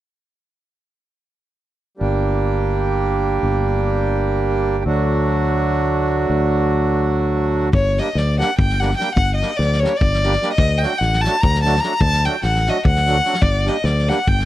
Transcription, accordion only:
1.97 G3 A#3 D4
2.02 G4
4.84 F#3 A3 D4 F#4
7.98 G3 A#3 D4 G4
8.38 G3 A#3 D4 G4
8.79 G3 A#3 D4 G4
8.98 G3 A#3 D4 G4
9.40 G3 A#3 D4 G4
9.82 G3 A#3 D4 G4
10.23 G3 A#3 D4 G4
10.42 G3 A#3 D4 G4
10.81 F#3 A3 D4 F#4
11.25 F#3 A3 D4 F#4
11.64 F#3 A3 D4 F#4
11.83 F#3 A3 D4 F#4
12.25 F#3 A3 D4 F#4
12.68 F#3 A3 D4 F#4
13.06 F#3 A3 D4 F#4
13.24 F#3 A3 D4 F#4
13.65 G3 A#3 D4 G4
14.07 G3 A#3 D4 G4

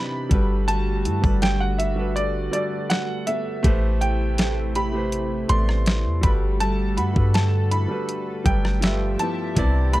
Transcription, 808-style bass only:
0.31 G1
1.06 G2
1.24 G1
3.64 A1
5.50 A1
6.05 E2
6.24 G1
6.98 G2
7.16 G2
8.46 G1
9.57 C2

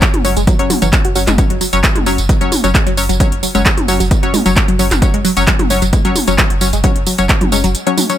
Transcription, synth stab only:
0.25 F#3 C#4 C#5
0.59 F#3 C#4 C#5
0.82 F#3 C#4 C#5
1.16 F#3 C#4 C#5
1.38 F#3 C#4 C#5
1.73 F#3 C#4 C#5
2.06 F#3 C#4 C#5
2.41 F#3 C#4 C#5
2.64 F#3 C#4 C#5
2.97 F#3 C#4 C#5
3.20 F#3 C#4 C#5
3.55 F#3 C#4 C#5
3.88 F#3 C#4 C#5
4.23 F#3 C#4 C#5
4.46 F#3 C#4 C#5
4.79 F#3 C#4 C#5
5.02 F#3 C#4 C#5
5.37 F#3 C#4 C#5
5.70 F#3 C#4 C#5
6.05 F#3 C#4 C#5
6.28 F#3 C#4 C#5
6.61 F#3 C#4 C#5
6.84 F#3 C#4 C#5
7.18 F#3 C#4 C#5
7.52 F#3 C#4 C#5
7.87 F#3 C#4 C#5
8.10 F#3 C#4 C#5

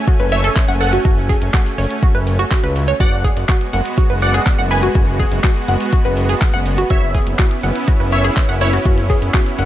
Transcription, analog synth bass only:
0.20 F#1
0.69 F#1
1.05 F#1
1.42 F#1
1.78 F#1
2.15 F#1
2.64 C#2
3.00 F#1
3.37 F#1
3.73 F#1
4.10 F#1
4.59 F#1
4.95 F#1
5.32 F#1
5.68 F#1
6.05 F#1
6.54 F#1
6.90 F#1
7.27 F#1
7.64 F#1
8.00 F#1
8.49 F#1
8.86 F#1
9.22 F#1
9.59 F#1

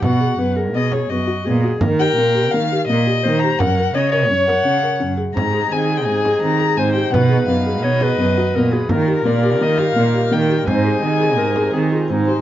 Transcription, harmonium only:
5.36 C3 G#3 D#4
7.11 D#3 F#4 B4
8.89 G3 F4
10.68 C3 G#3 D#4

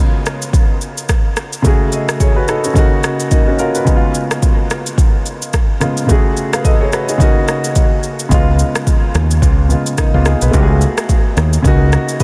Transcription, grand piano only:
Already playing: C#3 G#3 B3 F4
1.62 C#3 A3 F#4
1.67 G#4
1.92 A4 D#5
2.20 G#4 C#5
2.36 F#4 B4
2.48 D#4 A4
2.64 C#4 F#4
2.73 C#3 A#3 D#4
2.78 F#4
3.31 A#3 D#4
3.48 C#4 F#4
3.59 F4 A#4
3.75 F#4 B4
3.85 C#3 G#3 B3
3.90 D#4
3.96 F4
5.80 C#3 G#3 B3 F4
6.07 C#3 A3 F#4
6.12 G#4
6.53 B4 F5
6.65 A4 D#5
6.81 G#4 C#5
6.92 F#4 B4
7.09 D#4 G#4
7.18 C#3 A#3 D#4
7.23 F#4
8.29 C#3 G#3 B3
8.34 F4
9.69 C#3 G#3 B3 F4
9.98 A#3 D#4
10.14 B3 F4
10.26 D#4 G#4
10.42 F4 B4
10.51 A3 F#4
10.56 G4
10.63 G#4
11.62 C#3 A#3 D#4
11.67 F#4
12.20 B4 D#5

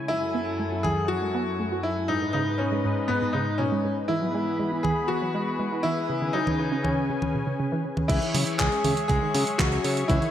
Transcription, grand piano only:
0.08 E4
0.83 G#4
1.08 F#4
1.83 E4
2.08 D#4
2.33 D#4
2.58 C#4
3.08 B3
3.33 D#4
3.58 C#4
4.08 E4
4.83 G#4
5.08 F#4
5.83 E4
6.33 D#4
6.83 C#4
8.08 E3 E4
8.58 G#3 G#4
9.08 G#3 G#4
9.58 F#3 F#4
10.08 E3 E4

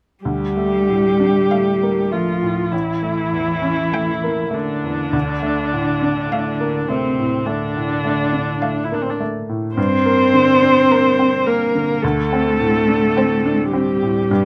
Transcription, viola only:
0.25 G4
2.12 F4
2.72 E4
4.54 D4
6.89 C4
7.46 D4
8.85 E4
8.94 D4
9.02 C4
9.10 D4
9.76 C5
11.47 A#4
12.02 A4
13.72 G4

